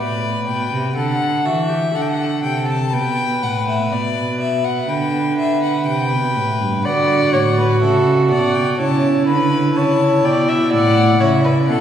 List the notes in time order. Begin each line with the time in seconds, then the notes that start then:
Already playing: B4 D5
0.00 A2
0.47 B2 G5
0.72 C3
0.96 D3 A4 F#5
1.45 E3 F#4 E5
1.69 G4
1.94 D3 A4 F#5
2.01 G5
2.09 F#5
2.43 C3 G5
2.68 A5
2.92 B2 B4 G5
3.42 A2 F#5
3.68 E5
3.91 B2 D5
4.41 E5
4.64 F#5
4.88 D3 B4 G5
5.38 E5
5.63 F#5
5.86 C3 G5
6.12 B2
6.36 A2
6.60 G2
6.84 D3 F#4 D5 F#5
7.33 A2 C#5
7.57 B4
7.81 C#3 A4 E5
8.30 B2 D5 F#5
8.54 G5
8.78 C#3 E4 C#5 A5
9.27 D3 B4 B5
9.76 C#3 C#5 A5
10.24 B2 D5 G5
10.48 E5
10.72 A2 D5 F#5
11.20 C#3 C#5 E5
11.44 B4
11.68 B2 A4 F#5